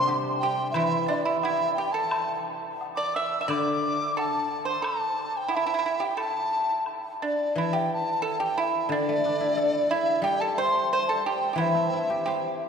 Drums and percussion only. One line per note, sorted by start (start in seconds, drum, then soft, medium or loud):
0.07 low woodblock soft
0.74 high woodblock medium
1.43 high woodblock soft
1.43 low woodblock soft
2.11 high woodblock medium
2.81 low woodblock soft
3.50 high woodblock soft
4.18 low woodblock soft
4.84 high woodblock medium
5.51 low woodblock soft
6.18 high woodblock medium
6.86 high woodblock soft